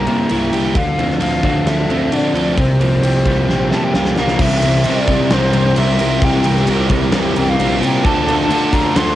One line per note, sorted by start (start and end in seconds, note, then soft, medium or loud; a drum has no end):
0.00 0.76 G3 medium
0.00 0.29 E4 medium
0.00 0.76 A#4 medium
0.00 0.55 A#5 loud
0.07 0.29 C3 medium
0.07 0.77 A#3 medium
0.07 ride medium
0.29 0.52 C2 medium
0.29 0.77 E4 medium
0.29 ride medium
0.52 0.75 C2 medium
0.52 0.77 G3 medium
0.52 0.76 G4 medium
0.52 ride medium
0.75 0.97 D2 medium
0.75 1.90 D3 medium
0.75 1.19 F5 loud
0.75 kick loud
0.75 ride medium
0.98 1.20 D2 medium
0.98 1.19 F3 medium
0.98 1.90 C4 medium
0.98 ride medium
1.10 snare soft
1.20 1.43 D2 medium
1.20 1.66 F3 medium
1.20 1.66 A4 medium
1.20 1.69 F5 loud
1.20 ride medium
1.43 1.66 D2 medium
1.43 1.90 C4 medium
1.43 2.11 D4 medium
1.43 kick medium
1.43 ride medium
1.66 1.88 D2 medium
1.66 2.58 F3 medium
1.66 2.59 A4 medium
1.66 2.17 E5 loud
1.66 snare loud
1.66 ride medium
1.88 2.11 D2 medium
1.88 3.27 C4 medium
1.88 ride medium
2.12 2.33 D3 medium
2.12 2.58 D4 medium
2.12 2.61 D5 medium
2.12 ride medium
2.34 2.56 D2 medium
2.34 2.58 F3 medium
2.34 2.58 A4 medium
2.34 ride medium
2.58 2.79 C2 medium
2.58 3.72 C3 medium
2.58 3.72 C5 medium
2.58 kick loud
2.58 ride medium
2.79 3.02 C2 medium
2.79 3.03 F3 medium
2.79 3.72 A#3 medium
2.79 ride medium
3.03 3.25 C2 medium
3.03 3.48 F3 medium
3.03 3.48 G4 medium
3.03 ride medium
3.25 3.48 C2 medium
3.25 3.71 G3 medium
3.25 3.95 F4 medium
3.25 kick medium
3.25 ride medium
3.48 3.70 A#1 medium
3.48 4.41 F3 medium
3.48 4.41 G4 medium
3.48 snare medium
3.71 3.93 C3 medium
3.71 4.40 G3 medium
3.71 4.41 A#3 medium
3.71 3.86 A5 medium
3.71 snare medium
3.85 4.20 G5 medium
3.94 4.17 C2 medium
3.94 4.41 F4 medium
3.94 snare medium
4.05 snare medium
4.16 4.39 C2 medium
4.16 4.41 F3 medium
4.16 4.41 A#4 medium
4.16 4.43 F5 medium
4.16 snare medium
4.28 snare medium
4.39 4.61 C2 loud
4.39 4.91 C3 loud
4.39 4.91 E3 medium
4.39 4.66 G3 medium
4.39 4.65 C4 loud
4.39 4.64 E4 loud
4.39 8.01 G4 medium
4.39 4.62 A#4 loud
4.39 4.89 E5 loud
4.39 8.01 G5 medium
4.39 8.01 A#5 medium
4.39 6.20 C6 medium
4.39 kick loud
4.39 crash loud
4.62 4.84 C2 loud
4.62 4.86 C4 medium
4.62 4.87 E4 medium
4.62 4.88 A#4 medium
4.62 ride medium
4.66 4.85 G3 medium
4.74 snare soft
4.84 5.29 C3 medium
4.84 5.30 C3 medium
4.84 5.31 G3 medium
4.84 5.32 C4 medium
4.84 5.31 E4 medium
4.84 5.35 D5 loud
4.84 ride loud
4.88 5.32 A#4 medium
5.08 5.32 C4 medium
5.08 kick medium
5.08 ride medium
5.12 5.31 G3 medium
5.30 5.53 C2 loud
5.30 5.77 C3 loud
5.30 5.77 E3 medium
5.30 5.55 G3 loud
5.30 5.55 C4 loud
5.30 5.54 E4 loud
5.30 5.53 A#4 loud
5.30 5.80 C5 medium
5.30 snare loud
5.30 ride loud
5.53 5.76 C2 loud
5.53 5.76 G3 medium
5.53 5.78 C4 medium
5.53 5.78 E4 medium
5.53 5.79 A#4 medium
5.53 ride medium
5.76 5.99 C2 loud
5.76 6.22 C3 medium
5.76 6.02 G3 medium
5.76 6.02 C4 medium
5.76 6.00 E4 medium
5.76 6.26 E5 loud
5.76 ride loud
5.80 5.99 A#4 medium
5.99 6.21 C2 loud
5.99 6.25 C4 medium
5.99 6.25 E4 medium
5.99 6.25 A#4 medium
5.99 ride medium
6.03 6.24 G3 medium
6.22 6.43 C2 medium
6.22 6.69 C3 medium
6.22 6.69 E3 medium
6.22 6.47 G3 medium
6.22 6.69 G5 medium
6.22 9.15 D6 medium
6.22 kick loud
6.22 ride loud
6.26 6.48 C4 loud
6.26 6.46 E4 loud
6.26 6.45 A#4 loud
6.44 6.66 C2 loud
6.44 6.68 E4 medium
6.44 6.69 A#4 medium
6.44 ride medium
6.48 6.66 G3 medium
6.48 6.68 C4 medium
6.56 snare soft
6.67 6.89 C2 medium
6.67 7.12 C3 medium
6.67 7.14 G3 medium
6.67 7.15 C4 medium
6.67 7.15 E4 medium
6.67 7.15 A#4 loud
6.67 ride loud
6.89 7.12 C2 loud
6.89 7.16 C4 medium
6.89 kick medium
6.89 ride medium
6.94 7.14 G3 medium
7.12 7.35 C2 loud
7.12 7.59 C3 medium
7.12 7.60 E3 loud
7.12 7.38 G3 loud
7.12 7.39 C4 loud
7.12 7.37 E4 loud
7.12 snare loud
7.12 ride loud
7.16 7.36 A#4 loud
7.36 7.58 C2 medium
7.36 7.58 G3 medium
7.36 7.60 C4 medium
7.36 7.60 E4 medium
7.36 7.61 A#4 medium
7.36 7.51 G5 medium
7.36 ride medium
7.49 7.82 F5 medium
7.59 7.81 A#1 medium
7.59 8.02 C3 medium
7.59 7.84 G3 medium
7.59 7.84 C4 medium
7.59 7.82 E4 medium
7.59 7.81 A#4 medium
7.59 ride loud
7.81 8.04 A#2 loud
7.81 8.04 C4 medium
7.81 8.04 E4 medium
7.81 8.04 A#4 medium
7.81 8.07 G5 medium
7.81 ride medium
7.85 8.03 G3 medium
8.04 8.27 D2 loud
8.04 8.50 D3 medium
8.04 8.26 A3 loud
8.04 9.15 A3 medium
8.04 8.29 D4 loud
8.04 8.28 F4 medium
8.04 8.27 A4 loud
8.04 9.15 F5 medium
8.04 8.39 A5 loud
8.04 9.15 C6 medium
8.04 kick loud
8.04 ride loud
8.25 8.49 D2 medium
8.25 8.50 A3 medium
8.25 8.51 D4 medium
8.25 8.52 F4 medium
8.25 8.53 A4 medium
8.25 ride medium
8.29 8.51 D4 medium
8.40 8.75 A5 loud
8.40 snare soft
8.50 8.94 D3 medium
8.50 8.73 A3 medium
8.50 8.95 D4 medium
8.50 8.96 F4 medium
8.50 8.96 A4 medium
8.50 ride loud
8.71 8.95 A3 medium
8.71 8.97 D4 medium
8.71 8.99 A#5 loud
8.71 kick medium
8.71 ride medium
8.95 9.15 D2 loud
8.95 9.15 D3 medium
8.95 9.15 A3 loud
8.95 9.15 D4 loud
8.95 9.15 F4 loud
8.95 9.15 A4 loud
8.95 9.15 C6 loud
8.95 snare loud
8.95 ride loud